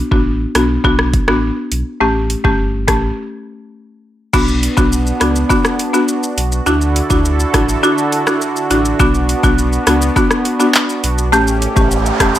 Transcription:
0.11 sub bass A1, marimba B3 D4 F#4, kick
0.55 sub bass B1, marimba B3 D4 F#4, cross-stick, closed hi-hat
0.84 sub bass B1, marimba B3 D4 F#4, kick
0.99 cross-stick
1.13 kick, closed hi-hat
1.28 sub bass A1, marimba B3 D4 F#4, cross-stick
1.72 sub bass B1, closed hi-hat
2.00 sub bass A1, marimba A3 C#4 G4
2.30 closed hi-hat
2.44 sub bass G1, marimba A3 C#4 G4, kick
2.88 sub bass A1, marimba A3 C#4 G4, kick, cross-stick, closed hi-hat
4.33 sub bass B1, marimba B3 D4 F#4, analog synth pad B3 D4 F#4, kick, crash, shaker
4.48 shaker
4.63 closed hi-hat, shaker
4.77 sub bass B1, marimba B3 D4 F#4, kick, shaker
4.92 shaker
5.07 shaker
5.20 sub bass C#2, marimba B3 D4 F#4, cross-stick, closed hi-hat, shaker
5.36 shaker
5.50 marimba B3 D4 F#4, kick, shaker
5.65 cross-stick, shaker
5.79 closed hi-hat, shaker
5.93 marimba B3 D4 F#4, shaker
6.08 shaker
6.23 shaker
6.38 sub bass B1, closed hi-hat, shaker
6.52 shaker
6.66 sub bass D2, analog synth pad D3 D4 E4 A4, marimba D4 E4 F#4, shaker
6.81 shaker
6.96 closed hi-hat, shaker
7.10 sub bass D2, marimba D4 E4 F#4, kick, shaker
7.25 shaker
7.40 shaker
7.54 sub bass A1, marimba D4 E4 F#4, kick, cross-stick, closed hi-hat, shaker
7.69 shaker
7.83 marimba D4 E4 F#4, shaker
7.98 shaker
8.12 closed hi-hat, shaker
8.27 marimba D4 E4 F#4, cross-stick, shaker
8.42 shaker
8.56 shaker
8.70 sub bass A1, marimba D4 E4 F#4, closed hi-hat, shaker
8.85 shaker
8.99 sub bass B1, marimba B3 D4 F#4, analog synth pad B3, kick, shaker
9.14 shaker
9.29 closed hi-hat, shaker
9.43 sub bass B1, marimba B3 D4 F#4, kick, shaker
9.58 shaker
9.73 shaker
9.87 sub bass C#2, marimba B3 D4 F#4, cross-stick, closed hi-hat, shaker
10.02 shaker
10.16 marimba B3 D4 F#4, kick, shaker
10.31 cross-stick, shaker
10.45 closed hi-hat, shaker
10.60 marimba B3 D4 F#4, shaker
10.74 clap, shaker
10.89 shaker
11.04 sub bass B1, closed hi-hat, shaker
11.18 shaker
11.32 sub bass A1, marimba A3 C#4 G4, analog synth pad A3 C#4 G4, noise sweep, shaker
11.47 shaker
11.62 closed hi-hat, shaker
11.76 sub bass A1, marimba A3 C#4 G4, kick, shaker
11.91 shaker
12.06 shaker
12.20 sub bass E1, marimba A3 C#4 G4, kick, cross-stick, closed hi-hat, shaker
12.35 shaker

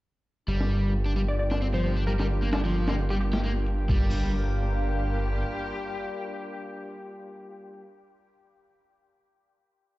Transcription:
0.48 detuned saw bass G1, horn section G3 A#3 D4 F4 G4, overdriven electric guitar G3, analog synth pad F4 A#4 G5 D6, closed hi-hat
0.61 snare
0.71 closed hi-hat
0.94 closed hi-hat
1.06 overdriven electric guitar D4
1.16 overdriven electric guitar G3, closed hi-hat
1.28 digital synth lead D5
1.39 digital synth lead D5, open hi-hat
1.51 overdriven electric guitar D4, snare
1.62 overdriven electric guitar C4
1.74 overdriven electric guitar F3, digital synth lead C5
1.84 digital synth lead C5, closed hi-hat
1.97 overdriven electric guitar D4
2.07 overdriven electric guitar G3, digital synth lead A#4
2.19 overdriven electric guitar G3, snare
2.30 closed hi-hat
2.42 overdriven electric guitar A#3
2.53 overdriven electric guitar D4, snare, closed hi-hat
2.65 overdriven electric guitar F3
2.76 closed hi-hat
2.87 overdriven electric guitar A#3, snare, closed hi-hat
3.10 overdriven electric guitar G3, digital synth lead G4
3.20 digital synth lead G4, closed hi-hat
3.33 overdriven electric guitar G4, snare
3.44 overdriven electric guitar A#3, closed hi-hat
3.66 closed hi-hat
3.89 detuned saw bass G1, horn section G3 A#3 D4 F4 G4, overdriven electric guitar G3, analog synth pad D4 A#4 F5 G5, kick, crash

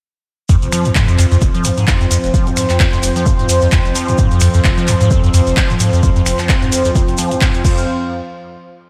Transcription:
0.49 analog synth pad F2 F3 C4 C5, acid bass F2, kick, closed hi-hat, shekere
0.62 acid bass F1, closed hi-hat, shekere
0.72 acid bass F3, finger snap, open hi-hat, shekere
0.85 acid bass F2, closed hi-hat, shekere
0.95 acid bass G#2, kick, clap, closed hi-hat, shekere
1.08 acid bass F2, closed hi-hat, shekere
1.18 acid bass F2, clap, open hi-hat, shekere
1.31 acid bass F2, closed hi-hat, shekere
1.41 acid bass F1, kick, closed hi-hat, shekere
1.54 acid bass F3, closed hi-hat, shekere
1.64 acid bass F2, open hi-hat, shekere
1.77 acid bass G#2, closed hi-hat, shekere
1.87 acid bass F2, kick, clap, closed hi-hat, shekere
2.01 acid bass F2, closed hi-hat, shekere
2.11 acid bass F2, open hi-hat, shekere
2.24 acid bass F1, closed hi-hat, shekere
2.34 acid bass F3, kick, closed hi-hat, shekere
2.47 acid bass F2, closed hi-hat, shekere
2.57 acid bass G#2, finger snap, open hi-hat, shekere
2.70 acid bass F2, clap, closed hi-hat, shekere
2.80 acid bass F2, kick, clap, closed hi-hat, shekere
2.93 acid bass F2, closed hi-hat, shekere
3.03 acid bass F1, open hi-hat, shekere
3.16 acid bass F3, closed hi-hat, shekere
3.26 acid bass F2, kick, closed hi-hat, shekere
3.39 acid bass G#2, closed hi-hat, shekere
3.49 acid bass F2, open hi-hat, shekere
3.61 acid bass F2, closed hi-hat, shekere
3.72 acid bass F2, kick, clap, closed hi-hat, shekere
3.85 acid bass F1, closed hi-hat, shekere
3.95 acid bass F3, open hi-hat, shekere
4.08 acid bass F2, closed hi-hat, shekere
4.18 acid bass G#2, kick, closed hi-hat, shekere
4.31 acid bass F2, closed hi-hat, shekere
4.40 acid bass F2, finger snap, open hi-hat, shekere
4.54 acid bass F2, closed hi-hat, shekere
4.64 acid bass F1, kick, clap, closed hi-hat, shekere
4.77 acid bass F3, closed hi-hat, shekere
4.87 acid bass F2, clap, open hi-hat, shekere
5.01 acid bass G#2, closed hi-hat, shekere
5.11 acid bass F2, kick, closed hi-hat, shekere
5.24 acid bass F2, closed hi-hat, shekere
5.34 acid bass F2, open hi-hat, shekere
5.47 acid bass F1, closed hi-hat, shekere
5.57 acid bass F3, kick, clap, closed hi-hat, shekere
5.70 acid bass F2, closed hi-hat, shekere
5.79 acid bass G#2, open hi-hat, shekere
5.93 acid bass F2, closed hi-hat, shekere
6.03 acid bass F2, kick, closed hi-hat, shekere
6.16 acid bass F2, closed hi-hat, shekere
6.26 acid bass F1, finger snap, open hi-hat, shekere
6.39 acid bass F3, clap, closed hi-hat, shekere
6.49 acid bass F2, kick, clap, closed hi-hat, shekere
6.62 acid bass G#2, closed hi-hat, shekere
6.72 acid bass F2, open hi-hat, shekere
6.85 acid bass F2, closed hi-hat, shekere
6.95 acid bass F2, kick, closed hi-hat, shekere
7.08 acid bass F1, closed hi-hat, shekere
7.18 acid bass F3, open hi-hat, shekere
7.31 acid bass F2, closed hi-hat, shekere
7.41 acid bass G#2, kick, clap, closed hi-hat, shekere
7.54 acid bass F2, closed hi-hat, shekere
7.64 acid bass F2, analog synth pad F3 C4 C5 F5, kick, crash, shekere
7.78 shekere

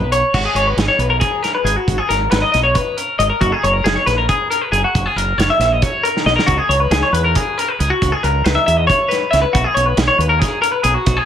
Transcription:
Already playing: clean electric guitar B4
0.00 fingered electric bass B1
0.12 clean electric guitar C#5, closed hi-hat
0.34 fingered electric bass G#1, clean electric guitar F#4, kick, crash
0.45 clean electric guitar G#4
0.54 fingered electric bass G#1, clean electric guitar C#5, closed hi-hat
0.67 clean electric guitar B4
0.77 fingered electric bass G#1, clean electric guitar G#4, snare, closed hi-hat
0.88 clean electric guitar C#5
0.98 fingered electric bass B1, clean electric guitar B4, closed hi-hat
1.10 clean electric guitar A#4
1.20 clean electric guitar G#4, kick, closed hi-hat
1.43 clean electric guitar A#4, snare, closed hi-hat
1.55 clean electric guitar B4
1.64 fingered electric bass G#1, clean electric guitar G#4, closed hi-hat
1.76 clean electric guitar F#4
1.87 fingered electric bass G#1, kick, closed hi-hat
1.98 clean electric guitar G#4
2.09 fingered electric bass G#1, clean electric guitar A#4, snare, closed hi-hat
2.31 fingered electric bass G#1, clean electric guitar B4, snare, closed hi-hat
2.42 clean electric guitar D#5
2.52 fingered electric bass B1, clean electric guitar D#5, snare, closed hi-hat
2.63 clean electric guitar C#5
2.75 clean electric guitar B4, kick, closed hi-hat
2.97 clean electric guitar A#4, closed hi-hat
3.19 fingered electric bass G#1, clean electric guitar D#5, closed hi-hat
3.30 clean electric guitar A#4
3.40 fingered electric bass F#1, clean electric guitar F#4, kick, closed hi-hat
3.52 clean electric guitar G#4
3.63 fingered electric bass F#1, clean electric guitar C#5, closed hi-hat
3.74 clean electric guitar A#4
3.84 fingered electric bass F#1, clean electric guitar G#4, snare, closed hi-hat
3.96 clean electric guitar C#5
4.06 fingered electric bass A#1, clean electric guitar B4, snare, closed hi-hat
4.18 clean electric guitar A#4
4.29 clean electric guitar G#4, kick, closed hi-hat
4.50 clean electric guitar A#4, closed hi-hat
4.62 clean electric guitar B4
4.72 fingered electric bass F#1, clean electric guitar G#4, closed hi-hat
4.84 clean electric guitar F#4
4.95 fingered electric bass F#1, kick, closed hi-hat
5.06 clean electric guitar G#4
5.16 fingered electric bass F#1, clean electric guitar A#4, closed hi-hat
5.37 fingered electric bass F#1, clean electric guitar C#5, snare, closed hi-hat
5.50 clean electric guitar E5
5.59 fingered electric bass A#1, clean electric guitar E5, snare, closed hi-hat
5.73 clean electric guitar D#5
5.82 clean electric guitar C#5, kick, closed hi-hat
6.04 clean electric guitar A#4, closed hi-hat
6.17 snare
6.26 fingered electric bass B1, clean electric guitar D#5, snare
6.36 clean electric guitar A#4, snare
6.46 fingered electric bass C#2, clean electric guitar F#4, kick, closed hi-hat
6.58 clean electric guitar G#4
6.69 fingered electric bass C#2, clean electric guitar C#5, closed hi-hat
6.80 clean electric guitar B4
6.90 fingered electric bass C#2, clean electric guitar G#4, snare, closed hi-hat
7.03 clean electric guitar C#5
7.12 fingered electric bass E2, clean electric guitar B4, closed hi-hat
7.24 clean electric guitar A#4
7.35 clean electric guitar G#4, kick, closed hi-hat
7.58 clean electric guitar A#4, closed hi-hat
7.68 clean electric guitar B4
7.79 fingered electric bass C#2, clean electric guitar G#4, closed hi-hat
7.90 clean electric guitar F#4
8.02 fingered electric bass C#2, kick, closed hi-hat
8.12 clean electric guitar G#4
8.23 fingered electric bass C#2, clean electric guitar A#4, closed hi-hat
8.44 fingered electric bass C#2, clean electric guitar B4, snare, closed hi-hat
8.55 clean electric guitar E5
8.66 fingered electric bass E2, clean electric guitar E5, closed hi-hat
8.77 clean electric guitar D#5
8.87 clean electric guitar C#5, kick, closed hi-hat
9.09 clean electric guitar B4, snare, closed hi-hat
9.31 fingered electric bass C#2, clean electric guitar E5, snare, closed hi-hat
9.42 clean electric guitar B4
9.53 fingered electric bass B1, clean electric guitar F#4, kick, closed hi-hat
9.64 clean electric guitar G#4
9.75 fingered electric bass B1, clean electric guitar C#5, closed hi-hat
9.86 clean electric guitar B4
9.97 fingered electric bass B1, clean electric guitar G#4, snare, closed hi-hat
10.08 clean electric guitar C#5
10.18 fingered electric bass D#2, clean electric guitar B4, closed hi-hat
10.29 clean electric guitar A#4
10.40 clean electric guitar G#4, kick, snare, closed hi-hat
10.62 clean electric guitar A#4, closed hi-hat
10.72 clean electric guitar B4
10.83 fingered electric bass B1, clean electric guitar G#4, closed hi-hat
10.94 clean electric guitar F#4
11.06 fingered electric bass B1, kick, closed hi-hat
11.17 clean electric guitar G#4

